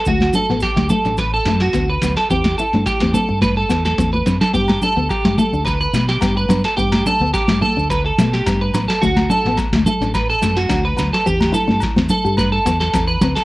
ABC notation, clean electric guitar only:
X:1
M:4/4
L:1/16
Q:"Swing 16ths" 1/4=107
K:G
V:1 name="Clean electric guitar"
F2 A2 G2 A2 B A2 F2 B2 A | G2 A2 G2 A2 B A2 A2 B2 A | G2 A2 G2 A2 B B2 G2 B2 A | G2 A2 G2 A2 B A2 G2 B2 A |
F2 A2 z2 A2 B A2 F2 B2 A | G2 A2 z2 A2 B A2 A2 B2 A |]